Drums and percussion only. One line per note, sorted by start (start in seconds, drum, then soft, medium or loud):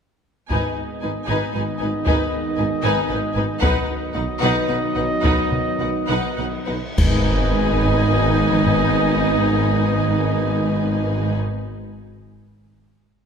0.50 taiko medium
2.07 taiko medium
3.62 taiko medium
5.24 taiko medium
5.52 taiko low-mid soft
6.98 concert bass drum medium
6.98 taiko loud
6.98 crash medium
8.51 taiko mid soft
8.67 taiko low medium